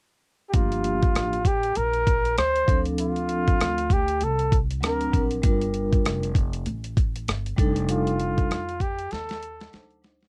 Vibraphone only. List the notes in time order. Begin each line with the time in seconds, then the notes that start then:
0.52 F3 A#3 D4 G4
2.67 F3 C4 D4 A4
4.81 F#3 C4 D4 A#4
5.12 F#3 C4 D4 A#4
5.42 G3 D4 F4 A#4
7.56 G3 D4 D#4 A4
9.71 F#3 D4 D#4 C5
10.02 F#3 D4 D#4 C5